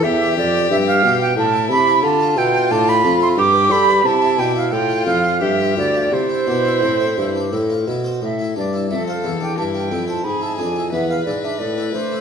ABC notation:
X:1
M:3/4
L:1/16
Q:1/4=89
K:C
V:1 name="Flute"
e2 d2 e f2 g a2 b2 | a2 g2 a b2 c' d'2 b2 | a2 g f g2 f2 e2 d2 | c8- c2 z2 |
[K:Am] e2 d2 e f2 g a g2 a | b a ^g2 e f d e d2 c2 |]
V:2 name="Violin"
G8 E4 | F8 G4 | E4 F4 G4 | E8- E2 z2 |
[K:Am] z4 A4 E4 | ^G4 B8 |]
V:3 name="Harpsichord"
z G F G E e G F z E D E | z F E F D d F E z B A B | z E D E z F E F z F E F | z E D E C c E D E F E c |
[K:Am] z E D E C c E D E F E c | z E D E B, B E D z E D E |]
V:4 name="Harpsichord" clef=bass
E,,2 F,,2 G,,2 B,,2 A,,2 C,2 | D,2 B,,2 A,,2 F,,2 G,,2 G,2 | C,2 B,,2 A,,2 F,,2 G,,2 D,,2 | C,2 B,,2 A,,2 G,,2 A,,2 B,,2 |
[K:Am] A,,2 G,,2 F,,2 E,,2 G,,2 F,,2 | ^G,,2 F,,2 E,,2 G,,2 A,,2 A,2 |]
V:5 name="Bassoon" clef=bass
E,,2 F,,2 G,,2 B,,2 A,,2 C,2 | D,2 B,,2 A,,2 F,,2 G,,2 G,2 | C,2 B,,2 A,,2 F,,2 G,,2 D,,2 | C,2 B,,2 A,,2 G,,2 A,,2 B,,2 |
[K:Am] A,,2 G,,2 F,,2 E,,2 G,,2 F,,2 | ^G,,2 F,,2 E,,2 G,,2 A,,2 A,2 |]